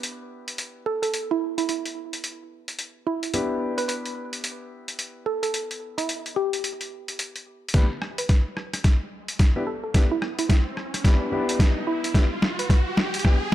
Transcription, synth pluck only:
0.86 0.97 A4 medium
1.02 1.10 A4 medium
1.31 1.42 E4 medium
1.58 1.65 E4 medium
1.69 1.80 E4 medium
3.07 3.62 E4 medium
3.78 3.85 B4 medium
3.88 3.99 B4 medium
5.26 5.37 A4 medium
5.43 5.50 A4 medium
5.98 6.09 E4 medium
6.36 6.81 G4 medium
8.18 8.25 B4 medium
8.30 8.40 B4 medium
9.67 9.78 A4 medium
9.84 9.91 A4 medium
10.12 10.22 E4 medium
10.39 10.46 E4 medium
10.49 10.60 E4 medium
11.87 12.15 E4 medium
12.59 12.66 B4 medium
12.71 12.81 B4 medium

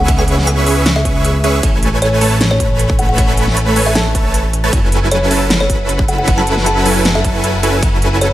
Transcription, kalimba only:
0.19 0.28 G#5 medium
0.47 0.58 G#5 medium
0.96 1.35 E5 medium
2.02 2.13 C#5 medium
2.51 2.79 C#5 medium
2.99 3.05 F#5 medium
3.09 3.15 F#5 medium
3.86 3.94 E5 medium
3.95 4.34 A5 medium
5.12 5.22 C#5 medium
5.60 5.89 C#5 medium
6.08 6.15 F#5 medium
6.18 6.24 F#5 medium
6.38 6.48 A5 loud
6.66 6.77 A5 medium
7.15 7.54 E5 medium
8.21 8.32 C#5 medium

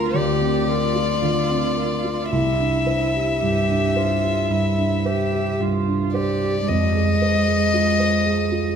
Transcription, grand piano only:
0.00 0.12 D2 soft
0.00 1.22 D3 soft
0.00 0.41 C4 soft
0.00 0.95 F4 soft
0.00 0.69 A#4 soft
0.14 2.26 D2 soft
0.41 0.84 C4 soft
0.69 1.12 A#4 soft
0.95 1.38 F4 soft
1.22 1.65 D3 soft
1.50 1.93 C4 soft
1.77 2.20 A#4 soft
2.04 2.31 F4 soft
2.32 4.47 C2 soft
2.60 3.03 D4 soft
2.86 3.30 C5 soft
3.15 3.58 G4 soft
3.42 3.85 G2 soft
3.69 4.12 D4 soft
3.96 4.40 C5 soft
4.23 4.67 G4 soft
4.50 4.94 G2 soft
4.78 5.22 D4 soft
5.05 5.49 C5 soft
5.33 5.77 G4 soft
5.60 6.04 G2 soft
5.87 6.31 D4 soft
6.14 6.58 C5 soft
6.42 6.69 G4 soft
6.69 8.75 F2 soft
6.95 7.37 G#4 soft
7.22 7.64 C5 soft
7.47 7.90 G#4 soft
7.74 8.16 F4 soft
8.00 8.42 C5 soft
8.26 8.68 G#4 soft
8.52 8.76 F4 soft

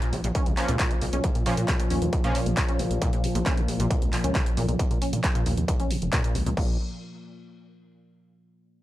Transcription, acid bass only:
0.02 0.14 A#2 medium
0.13 0.17 D#3 medium
0.24 0.28 A#2 medium
0.35 0.48 C#4 medium
0.46 0.52 A#2 medium
0.69 0.78 A#2 loud
0.79 0.92 A#2 medium
0.91 0.94 D#3 medium
1.02 1.05 A#2 medium
1.13 1.25 C#4 medium
1.24 1.30 A#2 medium
1.46 1.55 A#2 loud
1.57 1.70 A#2 medium
1.68 1.72 D#3 medium
1.80 1.83 A#2 medium
1.90 2.03 C#4 medium
2.02 2.08 A#2 medium
2.24 2.33 A#2 loud
2.35 2.48 A#2 medium
2.46 2.50 D#3 medium
2.57 2.61 A#2 medium
2.68 2.81 C#4 medium
2.79 2.86 A#2 medium
3.02 3.11 A#2 loud
3.13 3.25 A#2 medium
3.24 3.28 D#3 medium
3.35 3.39 A#2 medium
3.46 3.59 C#4 medium
3.57 3.63 A#2 medium
3.80 3.89 A#2 loud
3.91 4.03 A#2 medium
4.02 4.05 D#3 medium
4.13 4.17 A#2 medium
4.24 4.36 C#4 medium
4.35 4.41 A#2 medium
4.57 4.66 A#2 loud
4.68 4.81 A#2 medium
4.79 4.83 D#3 medium
4.91 4.94 A#2 medium
5.02 5.14 C#4 medium
5.13 5.19 A#2 medium
5.35 5.44 A#2 loud
5.46 5.59 A#2 medium
5.57 5.61 D#3 medium
5.68 5.72 A#2 medium
5.80 5.92 C#4 medium
5.90 5.97 A#2 medium
6.13 6.22 A#2 loud
6.24 6.36 A#2 medium
6.35 6.39 D#3 medium
6.46 6.50 A#2 medium
6.57 6.78 A#2 medium

